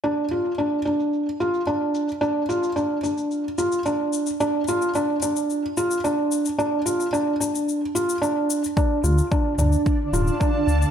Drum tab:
SH |x-xxx-xxx-xxx-xx|x-xxx-xxx-xxx-xx|x-xxx-xxx-xxx-xx|x-xxx-xxx-xxx-xx|
T2 |----------------|----------------|----------------|----------------|
BD |----------------|----------------|----------------|----------------|

SH |x-xxx-xxx-xxx-xx|
T2 |------o---o-----|
BD |o---o---o---o---|